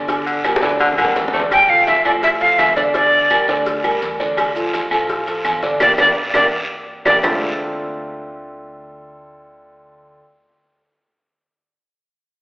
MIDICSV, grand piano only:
0, 0, Header, 1, 2, 480
1, 0, Start_track
1, 0, Key_signature, -1, "minor"
1, 0, Tempo, 357356
1, 116, Time_signature, 4, 2, 24, 8
1, 16680, End_track
2, 0, Start_track
2, 0, Title_t, "Grand piano"
2, 0, Program_c, 0, 0
2, 110, Note_on_c, 0, 50, 92
2, 117, Note_on_c, 0, 62, 83
2, 120, Note_on_c, 0, 74, 90
2, 506, Note_off_c, 0, 50, 0
2, 510, Note_off_c, 0, 62, 0
2, 512, Note_off_c, 0, 74, 0
2, 596, Note_on_c, 0, 55, 74
2, 602, Note_on_c, 0, 67, 73
2, 605, Note_on_c, 0, 70, 74
2, 793, Note_off_c, 0, 55, 0
2, 796, Note_off_c, 0, 67, 0
2, 798, Note_off_c, 0, 70, 0
2, 832, Note_on_c, 0, 50, 94
2, 836, Note_on_c, 0, 62, 89
2, 837, Note_on_c, 0, 74, 90
2, 1227, Note_off_c, 0, 50, 0
2, 1229, Note_off_c, 0, 62, 0
2, 1230, Note_off_c, 0, 74, 0
2, 1316, Note_on_c, 0, 55, 78
2, 1320, Note_on_c, 0, 67, 71
2, 1322, Note_on_c, 0, 70, 76
2, 1710, Note_off_c, 0, 55, 0
2, 1712, Note_off_c, 0, 67, 0
2, 1713, Note_off_c, 0, 70, 0
2, 1791, Note_on_c, 0, 50, 85
2, 1795, Note_on_c, 0, 62, 91
2, 1799, Note_on_c, 0, 74, 86
2, 1990, Note_off_c, 0, 50, 0
2, 1992, Note_off_c, 0, 62, 0
2, 1995, Note_off_c, 0, 74, 0
2, 2280, Note_on_c, 0, 53, 76
2, 2282, Note_on_c, 0, 65, 81
2, 2287, Note_on_c, 0, 69, 77
2, 2672, Note_off_c, 0, 53, 0
2, 2673, Note_off_c, 0, 65, 0
2, 2676, Note_off_c, 0, 69, 0
2, 2756, Note_on_c, 0, 53, 86
2, 2758, Note_on_c, 0, 65, 76
2, 2763, Note_on_c, 0, 69, 81
2, 3150, Note_off_c, 0, 53, 0
2, 3151, Note_off_c, 0, 65, 0
2, 3154, Note_off_c, 0, 69, 0
2, 3237, Note_on_c, 0, 53, 79
2, 3241, Note_on_c, 0, 65, 82
2, 3242, Note_on_c, 0, 69, 75
2, 3631, Note_off_c, 0, 53, 0
2, 3633, Note_off_c, 0, 65, 0
2, 3634, Note_off_c, 0, 69, 0
2, 3713, Note_on_c, 0, 50, 86
2, 3717, Note_on_c, 0, 62, 92
2, 3721, Note_on_c, 0, 74, 97
2, 3911, Note_off_c, 0, 50, 0
2, 3914, Note_off_c, 0, 62, 0
2, 3916, Note_off_c, 0, 74, 0
2, 3954, Note_on_c, 0, 50, 94
2, 3957, Note_on_c, 0, 62, 92
2, 3959, Note_on_c, 0, 74, 81
2, 4349, Note_off_c, 0, 50, 0
2, 4351, Note_off_c, 0, 62, 0
2, 4352, Note_off_c, 0, 74, 0
2, 4439, Note_on_c, 0, 55, 70
2, 4441, Note_on_c, 0, 67, 75
2, 4444, Note_on_c, 0, 70, 80
2, 4635, Note_off_c, 0, 55, 0
2, 4636, Note_off_c, 0, 67, 0
2, 4638, Note_off_c, 0, 70, 0
2, 4681, Note_on_c, 0, 50, 99
2, 4685, Note_on_c, 0, 62, 90
2, 4687, Note_on_c, 0, 74, 99
2, 5074, Note_off_c, 0, 50, 0
2, 5076, Note_off_c, 0, 62, 0
2, 5077, Note_off_c, 0, 74, 0
2, 5152, Note_on_c, 0, 55, 81
2, 5158, Note_on_c, 0, 67, 79
2, 5161, Note_on_c, 0, 70, 82
2, 5548, Note_off_c, 0, 55, 0
2, 5552, Note_off_c, 0, 67, 0
2, 5553, Note_off_c, 0, 70, 0
2, 5636, Note_on_c, 0, 50, 90
2, 5637, Note_on_c, 0, 62, 92
2, 5644, Note_on_c, 0, 74, 88
2, 6031, Note_off_c, 0, 50, 0
2, 6031, Note_off_c, 0, 62, 0
2, 6035, Note_off_c, 0, 74, 0
2, 6119, Note_on_c, 0, 53, 74
2, 6121, Note_on_c, 0, 65, 79
2, 6126, Note_on_c, 0, 69, 71
2, 6513, Note_off_c, 0, 53, 0
2, 6514, Note_off_c, 0, 65, 0
2, 6516, Note_off_c, 0, 69, 0
2, 6601, Note_on_c, 0, 53, 83
2, 6605, Note_on_c, 0, 65, 82
2, 6610, Note_on_c, 0, 69, 82
2, 6994, Note_off_c, 0, 53, 0
2, 6996, Note_off_c, 0, 65, 0
2, 6999, Note_off_c, 0, 69, 0
2, 7080, Note_on_c, 0, 53, 84
2, 7085, Note_on_c, 0, 65, 80
2, 7088, Note_on_c, 0, 69, 81
2, 7473, Note_off_c, 0, 53, 0
2, 7476, Note_off_c, 0, 65, 0
2, 7478, Note_off_c, 0, 69, 0
2, 7556, Note_on_c, 0, 50, 88
2, 7561, Note_on_c, 0, 62, 90
2, 7565, Note_on_c, 0, 74, 92
2, 7754, Note_off_c, 0, 50, 0
2, 7757, Note_off_c, 0, 62, 0
2, 7759, Note_off_c, 0, 74, 0
2, 7797, Note_on_c, 0, 67, 102
2, 7799, Note_on_c, 0, 58, 99
2, 7799, Note_on_c, 0, 62, 98
2, 7951, Note_off_c, 0, 67, 0
2, 7952, Note_off_c, 0, 58, 0
2, 7952, Note_off_c, 0, 62, 0
2, 8033, Note_on_c, 0, 58, 91
2, 8034, Note_on_c, 0, 62, 96
2, 8034, Note_on_c, 0, 67, 92
2, 8189, Note_off_c, 0, 58, 0
2, 8189, Note_off_c, 0, 62, 0
2, 8190, Note_off_c, 0, 67, 0
2, 8519, Note_on_c, 0, 67, 98
2, 8521, Note_on_c, 0, 58, 102
2, 8523, Note_on_c, 0, 62, 100
2, 8673, Note_off_c, 0, 67, 0
2, 8674, Note_off_c, 0, 58, 0
2, 8675, Note_off_c, 0, 62, 0
2, 9475, Note_on_c, 0, 67, 95
2, 9476, Note_on_c, 0, 58, 92
2, 9477, Note_on_c, 0, 62, 101
2, 9631, Note_off_c, 0, 58, 0
2, 9631, Note_off_c, 0, 67, 0
2, 9632, Note_off_c, 0, 62, 0
2, 9712, Note_on_c, 0, 50, 93
2, 9714, Note_on_c, 0, 57, 82
2, 9716, Note_on_c, 0, 60, 86
2, 9720, Note_on_c, 0, 62, 86
2, 9723, Note_on_c, 0, 65, 88
2, 9724, Note_on_c, 0, 69, 101
2, 13712, Note_off_c, 0, 50, 0
2, 13714, Note_off_c, 0, 57, 0
2, 13716, Note_off_c, 0, 60, 0
2, 13720, Note_off_c, 0, 62, 0
2, 13723, Note_off_c, 0, 65, 0
2, 13724, Note_off_c, 0, 69, 0
2, 16680, End_track
0, 0, End_of_file